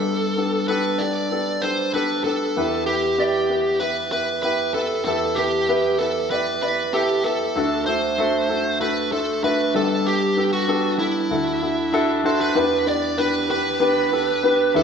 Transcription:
Already playing: grand piano G1 G2 B3 D4 G4 A4, lead electric guitar A4
0.37 grand piano B3 D4 G4 A4
0.68 grand piano B3 D4 G4 A4, lead electric guitar B4
0.99 grand piano B3 D4 G4 A4, lead electric guitar D5
1.31 grand piano B3 D4 G4 A4
1.62 grand piano B3 D4 G4 A4, lead electric guitar C5
1.94 grand piano B3 D4 G4 A4, lead electric guitar B4
2.24 grand piano B3 D4 G4 A4, lead electric guitar A4
2.56 grand piano E2 E3 B3 E4 G4 B4
2.86 grand piano B3 E4 G4 B4, lead electric guitar G4
3.18 grand piano B3 E4 G4 D5
3.50 grand piano B3 E4 G4 B4
3.80 grand piano B3 E4 G4 B4, lead electric guitar B4
4.12 grand piano B3 E4 G4 B4, lead electric guitar B4
4.43 grand piano B3 E4 G4 B4, lead electric guitar B4
4.74 grand piano B3 E4 G4 B4, lead electric guitar A4
5.05 grand piano E2 E3 B3 E4 G4 A4, lead electric guitar A4
5.35 grand piano B3 E4 G4 B4, lead electric guitar G4
5.69 grand piano B3 E4 G4 B4
5.99 grand piano B3 E4 G4 B4, lead electric guitar A4
6.30 grand piano B3 E4 G4 D5, lead electric guitar B4
6.62 grand piano B3 E4 G4 D5, lead electric guitar B4
6.93 grand piano B3 E4 G4 A4, lead electric guitar G4
7.24 grand piano B3 E4 G4 A4, lead electric guitar A4
7.55 grand piano D2 D3 A3 D4 F#4 A4
7.86 grand piano A3 D4 F#4 A4, lead electric guitar C5
8.18 grand piano A3 D4 F#4 A4
8.49 grand piano A3 D4 F#4 A4
8.80 grand piano A3 D4 F#4 A4, lead electric guitar B4
9.11 grand piano A3 D4 F#4 C5, lead electric guitar A4
9.43 grand piano A3 D4 F#4 B4, lead electric guitar B4
9.74 grand piano G1 G2 B3 D4 G4 A4, lead electric guitar A4
10.06 lead electric guitar G4
10.37 grand piano B3 D4 G4 A4
10.53 lead electric guitar F#4
10.68 grand piano B3 D4 G4 A4
10.99 grand piano B3 D4 G4 A4, lead electric guitar E4
11.30 grand piano D2 D3 D4 E4 F#4 A4
11.62 grand piano D4 E4 F#4 A4
11.92 grand piano D4 E4 F#4 A4
12.24 grand piano D4 E4 F#4 C5, lead electric guitar A4
12.41 lead electric guitar B4
12.55 grand piano E2 E3 B3 D4 G4 B4, string section E3 D4 G4 B4
12.86 grand piano B3 D4 G4 D5, lead electric guitar D5
13.17 grand piano B3 D4 G4 B4, lead electric guitar B4
13.49 grand piano B3 D4 G4 B4, lead electric guitar B4
13.80 grand piano B3 D4 G4 B4
14.12 grand piano B3 D4 G4 A4
14.43 grand piano B3 D4 G4 B4
14.74 grand piano E2 E3 D4 E4 G4 B4, string section B2 E4 G#4 D5, lead electric guitar A4

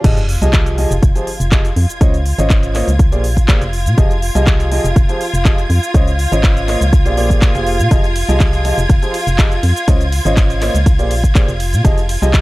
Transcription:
0.04 fm bass F1, upright piano F3 F4 G4 G#4 D#5, violin section F4 G#6, kick, cross-stick, closed hi-hat, crash, sub drop, shaker
0.17 closed hi-hat, shaker
0.29 open hi-hat
0.42 fm bass C2, upright piano F3 F4 G4 G#4 D#5, closed hi-hat, shaker
0.53 kick, clap, closed hi-hat, shaker
0.66 closed hi-hat, shaker
0.78 upright piano F3 F4 G4 G#4 D#5, open hi-hat
0.91 fm bass F1, closed hi-hat, shaker
1.03 fm bass F1, kick, cross-stick, closed hi-hat, shaker
1.16 upright piano F3 F4 G4 G#4 C5, closed hi-hat, shaker
1.27 open hi-hat
1.40 fm bass F1, closed hi-hat, shaker
1.52 upright piano F3 F4 G4 G#4 D#5, kick, clap, closed hi-hat, shaker
1.65 closed hi-hat, shaker
1.76 fm bass F2, open hi-hat
1.89 closed hi-hat, shaker
2.01 fm bass C#2, upright piano C#3 F4 C5 C#5 D#5, kick, cross-stick, closed hi-hat, shaker
2.14 closed hi-hat, shaker
2.26 open hi-hat
2.38 fm bass G#1, upright piano C#3 F4 C5 C#5 D#5, closed hi-hat, shaker
2.50 kick, clap, closed hi-hat, shaker
2.63 closed hi-hat, shaker
2.75 upright piano A#3 F4 C5 C#5 D#5, clap, open hi-hat
2.88 fm bass C#2, closed hi-hat, shaker
2.99 kick, closed hi-hat, shaker
3.12 fm bass A#1, upright piano A#3 G4 G#4 C5 D5, closed hi-hat, shaker
3.24 open hi-hat
3.37 kick, closed hi-hat, shaker
3.48 upright piano A#3 G4 G#4 C5 D5, kick, clap, closed hi-hat, shaker
3.62 fm bass F1, closed hi-hat, shaker
3.73 open hi-hat
3.86 fm bass A#2, closed hi-hat, shaker
3.98 fm bass F1, upright piano F3 F4 G4 G#4 D#5, kick, cross-stick, closed hi-hat, shaker
4.11 closed hi-hat, shaker
4.22 open hi-hat
4.35 fm bass C2, upright piano F3 F4 G4 G#4 D#5, closed hi-hat, shaker
4.47 kick, clap, closed hi-hat, shaker
4.60 closed hi-hat, shaker
4.71 upright piano F3 F4 G4 G#4 D#5, open hi-hat
4.84 fm bass F1, closed hi-hat, shaker
4.96 fm bass F1, kick, cross-stick, closed hi-hat, shaker
5.09 upright piano F3 F4 G4 G#4 C5, closed hi-hat, shaker
5.21 open hi-hat
5.34 fm bass F1, closed hi-hat, shaker
5.45 upright piano F3 F4 G4 G#4 D#5, kick, clap, closed hi-hat, shaker
5.58 closed hi-hat, shaker
5.70 fm bass F2, open hi-hat
5.83 closed hi-hat, shaker
5.94 fm bass C#2, upright piano C#3 F4 C5 C#5 D#5, kick, cross-stick, closed hi-hat, shaker
6.07 closed hi-hat, shaker
6.19 open hi-hat
6.32 fm bass G#1, upright piano C#3 F4 C5 C#5 D#5, closed hi-hat, shaker
6.43 kick, clap, closed hi-hat, shaker
6.57 closed hi-hat, shaker
6.68 upright piano A#3 F4 C5 C#5 D#5, clap, open hi-hat
6.81 fm bass C#2, closed hi-hat, shaker
6.93 kick, closed hi-hat, shaker
7.06 fm bass A#1, upright piano A#3 G4 G#4 C5 D5, closed hi-hat, shaker
7.17 upright piano A#3 G4 G#4 C5 D5, open hi-hat
7.30 kick, closed hi-hat, shaker
7.42 kick, clap, closed hi-hat, shaker
7.55 fm bass F1, upright piano A#3 G4 G#4 C5 F5, closed hi-hat, shaker
7.67 open hi-hat
7.79 fm bass A#2, closed hi-hat, shaker
7.91 fm bass F1, upright piano F3 F4 G4 G#4 D#5, kick, cross-stick, closed hi-hat, ride, shaker
8.04 closed hi-hat, shaker
8.16 open hi-hat, ride
8.29 fm bass C2, upright piano F3 F4 G4 G#4 D#5, closed hi-hat, shaker
8.40 kick, clap, closed hi-hat, ride, shaker
8.53 closed hi-hat, shaker
8.65 upright piano F3 F4 G4 G#4 D#5, open hi-hat, ride
8.78 fm bass F1, closed hi-hat, shaker
8.89 fm bass F1, kick, cross-stick, closed hi-hat, ride, shaker
9.02 upright piano F3 F4 G4 G#4 C5, closed hi-hat, shaker
9.14 open hi-hat, ride
9.27 fm bass F1, closed hi-hat, shaker
9.38 upright piano F3 F4 G4 G#4 D#5, kick, clap, closed hi-hat, ride, shaker
9.52 closed hi-hat, shaker
9.63 fm bass F2, open hi-hat, ride
9.76 closed hi-hat, shaker
9.88 fm bass C#2, upright piano C#3 F4 C5 C#5 D#5, kick, cross-stick, closed hi-hat, ride, shaker
10.01 closed hi-hat, shaker
10.12 open hi-hat, ride
10.25 fm bass G#1, upright piano C#3 F4 C5 C#5 D#5, closed hi-hat, shaker
10.37 kick, clap, closed hi-hat, ride, shaker
10.50 closed hi-hat, shaker
10.61 upright piano A#3 F4 C5 C#5 D#5, clap, open hi-hat, ride
10.75 fm bass C#2, closed hi-hat, shaker
10.86 kick, closed hi-hat, ride, shaker
10.99 fm bass A#1, upright piano A#3 G4 G#4 C5 D5, closed hi-hat, shaker
11.11 open hi-hat, ride
11.24 kick, closed hi-hat, shaker
11.35 upright piano A#3 G4 G#4 C5 D5, kick, clap, closed hi-hat, ride, shaker
11.48 fm bass F1, closed hi-hat, shaker
11.60 open hi-hat, ride
11.73 fm bass A#2, closed hi-hat, shaker
11.84 fm bass F1, upright piano F3 F4 G4 G#4 D#5, kick, cross-stick, closed hi-hat, ride, shaker
11.98 closed hi-hat, shaker
12.09 open hi-hat, ride
12.22 fm bass C2, upright piano F3 F4 G4 G#4 D#5, closed hi-hat, shaker
12.34 kick, clap, closed hi-hat, ride, shaker

